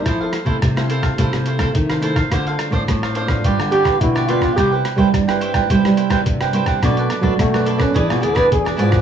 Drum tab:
HH |x-x-xxxxxxxxxxxx|xxx-x-x-x-x-x-x-|x-x-xxxxxxxxxxxx|xxx-x-x-x-x-x-x-|
SD |r-r-rr-r-r-r-r-r|r-r-rr-r-r-r-r-r|r-r-rr-r-r-r-r-r|r-r-rr-r-r-r-r-r|
BD |o--oo--oo--oo--o|o--oo--oo--oo--o|o--oo--oo--oo--o|o--oo--oo--oo--o|